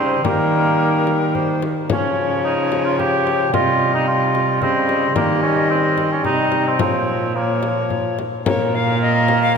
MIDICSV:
0, 0, Header, 1, 6, 480
1, 0, Start_track
1, 0, Tempo, 547945
1, 215, Time_signature, 3, 2, 24, 8
1, 8388, End_track
2, 0, Start_track
2, 0, Title_t, "Recorder"
2, 0, Program_c, 0, 74
2, 0, Note_on_c, 0, 72, 52
2, 212, Note_on_c, 0, 70, 57
2, 225, Note_off_c, 0, 72, 0
2, 1181, Note_on_c, 0, 72, 46
2, 1194, Note_off_c, 0, 70, 0
2, 1421, Note_off_c, 0, 72, 0
2, 1655, Note_on_c, 0, 73, 59
2, 3058, Note_off_c, 0, 73, 0
2, 3101, Note_on_c, 0, 75, 62
2, 4032, Note_off_c, 0, 75, 0
2, 4052, Note_on_c, 0, 75, 53
2, 4514, Note_off_c, 0, 75, 0
2, 4521, Note_on_c, 0, 75, 70
2, 5457, Note_off_c, 0, 75, 0
2, 5476, Note_on_c, 0, 75, 57
2, 5965, Note_on_c, 0, 73, 49
2, 5979, Note_off_c, 0, 75, 0
2, 6445, Note_off_c, 0, 73, 0
2, 6450, Note_on_c, 0, 73, 53
2, 7161, Note_off_c, 0, 73, 0
2, 7419, Note_on_c, 0, 73, 88
2, 7664, Note_on_c, 0, 77, 89
2, 7677, Note_off_c, 0, 73, 0
2, 7894, Note_off_c, 0, 77, 0
2, 7899, Note_on_c, 0, 75, 98
2, 8249, Note_off_c, 0, 75, 0
2, 8257, Note_on_c, 0, 77, 102
2, 8368, Note_off_c, 0, 77, 0
2, 8388, End_track
3, 0, Start_track
3, 0, Title_t, "Cor anglais"
3, 0, Program_c, 1, 69
3, 0, Note_on_c, 1, 60, 67
3, 206, Note_off_c, 1, 60, 0
3, 212, Note_on_c, 1, 58, 80
3, 1393, Note_off_c, 1, 58, 0
3, 1652, Note_on_c, 1, 61, 77
3, 2102, Note_off_c, 1, 61, 0
3, 2140, Note_on_c, 1, 63, 67
3, 2491, Note_off_c, 1, 63, 0
3, 2499, Note_on_c, 1, 65, 78
3, 2612, Note_off_c, 1, 65, 0
3, 2618, Note_on_c, 1, 67, 87
3, 3086, Note_off_c, 1, 67, 0
3, 3094, Note_on_c, 1, 65, 87
3, 3445, Note_off_c, 1, 65, 0
3, 3452, Note_on_c, 1, 63, 74
3, 3565, Note_off_c, 1, 63, 0
3, 3570, Note_on_c, 1, 65, 80
3, 4038, Note_off_c, 1, 65, 0
3, 4052, Note_on_c, 1, 60, 88
3, 4512, Note_off_c, 1, 60, 0
3, 4517, Note_on_c, 1, 58, 76
3, 4745, Note_off_c, 1, 58, 0
3, 4750, Note_on_c, 1, 61, 81
3, 4988, Note_off_c, 1, 61, 0
3, 4994, Note_on_c, 1, 60, 76
3, 5348, Note_off_c, 1, 60, 0
3, 5360, Note_on_c, 1, 61, 74
3, 5472, Note_off_c, 1, 61, 0
3, 5478, Note_on_c, 1, 63, 83
3, 5843, Note_on_c, 1, 60, 71
3, 5857, Note_off_c, 1, 63, 0
3, 5958, Note_off_c, 1, 60, 0
3, 5963, Note_on_c, 1, 60, 68
3, 6449, Note_on_c, 1, 58, 54
3, 6462, Note_off_c, 1, 60, 0
3, 6932, Note_off_c, 1, 58, 0
3, 7413, Note_on_c, 1, 70, 81
3, 8388, Note_off_c, 1, 70, 0
3, 8388, End_track
4, 0, Start_track
4, 0, Title_t, "Bassoon"
4, 0, Program_c, 2, 70
4, 0, Note_on_c, 2, 55, 65
4, 202, Note_off_c, 2, 55, 0
4, 208, Note_on_c, 2, 55, 67
4, 1391, Note_off_c, 2, 55, 0
4, 1659, Note_on_c, 2, 53, 60
4, 3085, Note_on_c, 2, 55, 60
4, 3099, Note_off_c, 2, 53, 0
4, 4034, Note_off_c, 2, 55, 0
4, 4040, Note_on_c, 2, 55, 65
4, 4506, Note_off_c, 2, 55, 0
4, 4511, Note_on_c, 2, 55, 67
4, 5453, Note_off_c, 2, 55, 0
4, 5457, Note_on_c, 2, 55, 59
4, 5948, Note_on_c, 2, 53, 50
4, 5961, Note_off_c, 2, 55, 0
4, 6430, Note_off_c, 2, 53, 0
4, 6435, Note_on_c, 2, 53, 45
4, 7153, Note_off_c, 2, 53, 0
4, 7408, Note_on_c, 2, 58, 77
4, 8388, Note_off_c, 2, 58, 0
4, 8388, End_track
5, 0, Start_track
5, 0, Title_t, "Cello"
5, 0, Program_c, 3, 42
5, 0, Note_on_c, 3, 49, 54
5, 205, Note_off_c, 3, 49, 0
5, 210, Note_on_c, 3, 51, 65
5, 1456, Note_off_c, 3, 51, 0
5, 1656, Note_on_c, 3, 49, 59
5, 3058, Note_off_c, 3, 49, 0
5, 3099, Note_on_c, 3, 48, 64
5, 4047, Note_on_c, 3, 49, 60
5, 4061, Note_off_c, 3, 48, 0
5, 4509, Note_off_c, 3, 49, 0
5, 4514, Note_on_c, 3, 51, 61
5, 5454, Note_off_c, 3, 51, 0
5, 5477, Note_on_c, 3, 48, 47
5, 5960, Note_on_c, 3, 46, 54
5, 5973, Note_off_c, 3, 48, 0
5, 7238, Note_off_c, 3, 46, 0
5, 7424, Note_on_c, 3, 46, 76
5, 8388, Note_off_c, 3, 46, 0
5, 8388, End_track
6, 0, Start_track
6, 0, Title_t, "Frame drum"
6, 216, Note_on_c, 9, 64, 67
6, 303, Note_off_c, 9, 64, 0
6, 938, Note_on_c, 9, 64, 46
6, 1025, Note_off_c, 9, 64, 0
6, 1182, Note_on_c, 9, 64, 42
6, 1269, Note_off_c, 9, 64, 0
6, 1423, Note_on_c, 9, 64, 52
6, 1511, Note_off_c, 9, 64, 0
6, 1661, Note_on_c, 9, 64, 81
6, 1749, Note_off_c, 9, 64, 0
6, 2381, Note_on_c, 9, 64, 50
6, 2469, Note_off_c, 9, 64, 0
6, 2623, Note_on_c, 9, 64, 44
6, 2711, Note_off_c, 9, 64, 0
6, 2864, Note_on_c, 9, 64, 49
6, 2952, Note_off_c, 9, 64, 0
6, 3098, Note_on_c, 9, 64, 67
6, 3185, Note_off_c, 9, 64, 0
6, 3810, Note_on_c, 9, 64, 46
6, 3897, Note_off_c, 9, 64, 0
6, 4044, Note_on_c, 9, 64, 47
6, 4131, Note_off_c, 9, 64, 0
6, 4284, Note_on_c, 9, 64, 46
6, 4372, Note_off_c, 9, 64, 0
6, 4518, Note_on_c, 9, 64, 76
6, 4606, Note_off_c, 9, 64, 0
6, 5235, Note_on_c, 9, 64, 48
6, 5323, Note_off_c, 9, 64, 0
6, 5470, Note_on_c, 9, 64, 47
6, 5558, Note_off_c, 9, 64, 0
6, 5709, Note_on_c, 9, 64, 49
6, 5797, Note_off_c, 9, 64, 0
6, 5951, Note_on_c, 9, 64, 81
6, 6039, Note_off_c, 9, 64, 0
6, 6681, Note_on_c, 9, 64, 50
6, 6768, Note_off_c, 9, 64, 0
6, 6923, Note_on_c, 9, 64, 47
6, 7011, Note_off_c, 9, 64, 0
6, 7171, Note_on_c, 9, 64, 48
6, 7259, Note_off_c, 9, 64, 0
6, 7412, Note_on_c, 9, 64, 86
6, 7500, Note_off_c, 9, 64, 0
6, 8132, Note_on_c, 9, 64, 55
6, 8220, Note_off_c, 9, 64, 0
6, 8388, End_track
0, 0, End_of_file